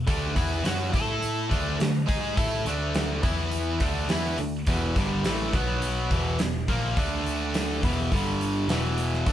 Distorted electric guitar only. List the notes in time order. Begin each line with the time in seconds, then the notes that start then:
0.07 D3 A3 D4
0.35 E3 B3 E4
0.65 F#3 C#4 F#4
0.93 A3 E4 A4
1.50 D3 A3 D4
1.79 D3 A3
2.07 G#3 D#4 G#4
2.37 A3 E4 A4
2.66 D3 A3 D4
3.23 E3 B3 E4
3.80 D3 A3 D4
4.09 E3 B3 E4
4.38 D3 A3
4.67 E2 B2 E3
4.96 G2 D3 G3
5.24 A2 E3 A3
5.53 B2 F#3 B3
6.11 E2 B2 E3
6.39 E2 B2
6.68 A#2 F3 A#3
6.97 D3 A3 D4
7.83 E2 B2 E3
8.12 G2 D3 G3
8.68 E2 B2 E3
9.27 D3 A3 D4